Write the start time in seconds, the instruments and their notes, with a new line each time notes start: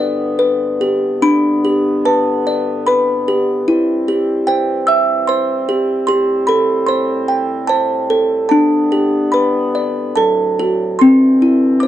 Already playing: woodwind section G2 D3 B3, music box D4 G4 B4 D5 G5
0.39 music box B4
0.81 music box G4
1.22 woodwind section G2 D3 B3, music box D4 B5
1.65 music box G4
2.05 music box B4 A5
2.47 music box D5
2.87 music box B4 B5
3.28 music box G4
3.67 woodwind section G2 E3 G3 C4, music box E4
4.08 music box G4
4.47 music box C5 G5
4.87 music box E5 E6
5.27 music box C5 C6
5.69 music box G4
6.07 woodwind section A2, music box G4 C6
6.47 music box A4 B5
6.86 music box C5 C6
7.28 music box G5
7.67 music box C5 A5
8.10 music box A4
8.49 woodwind section D3 B3, music box D4 A5
8.92 music box G4
9.32 music box B4 B5
9.75 music box D5
10.16 woodwind section D2 A2 F#3, music box A4 A5
10.59 music box F#4
10.99 woodwind section D3 E3 C4, music box C4 C6
11.42 music box E4
11.80 music box C5 D6